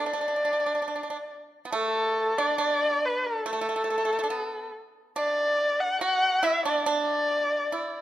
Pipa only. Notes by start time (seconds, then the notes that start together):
0.06 D4
0.13 D4
0.21 D4
0.28 D4
0.36 D4
0.45 D4
0.53 D4
0.60 D4
0.66 D4
0.75 D4
0.82 D4
0.88 D4
0.96 D4
1.03 D4
1.10 D4
1.65 B3
1.72 A3
2.38 D4
2.58 D4
3.46 A3
3.53 A3
3.61 A3
3.69 A3
3.76 A3
3.84 A3
3.90 A3
3.98 A3
4.05 A3
4.13 A3
4.19 A3
4.24 D4
4.30 B3
5.16 D4
6.01 F#4
6.43 E4
6.65 D4
6.86 D4
7.72 E4